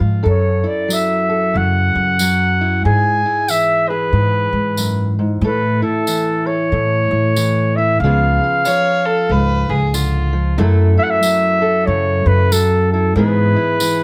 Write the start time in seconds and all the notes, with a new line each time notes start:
Already playing: G#2 F3 G#4
0.00 G#2 F4
0.23 F#2 A4
0.29 C#5
0.64 E4 D5
0.88 F#3, tambourine
0.93 E5
1.29 A4
1.54 F#2 C#3 F#5
1.95 F#2
2.19 F#3, tambourine
2.61 E4
2.85 G#2 G#4 G#5
3.26 E4
3.48 E3 E5, tambourine
3.89 G#4 B4
4.13 G#2
4.53 G#2
4.77 F#2, tambourine
5.19 G#2
5.41 A2 A4 B4
5.82 E4 A4
6.07 E3, tambourine
6.46 A4 C#5
6.72 A2
7.11 A2
7.36 E3, tambourine
7.76 E4 E5
8.00 C#2 C#3 F3 F5
8.04 B3 F4 G#4
8.44 F4
8.65 F3 C#5, tambourine
9.05 A4
9.29 C#2 G#2 B4
9.69 C#2 G#4
9.93 D3 F4, tambourine
10.33 F3
10.58 F#2 F#3 A3 E4 A4
10.97 E4 E5
11.03 F#5
11.10 E5
11.23 F#3, tambourine
11.62 A4
11.86 F#2 C#3 C#5
12.26 F#2 B4
12.51 F#3 A4, tambourine
12.92 E4 A4
13.16 G#2 E3 B3 E4 G#4 B4
13.56 E4
13.80 E3, tambourine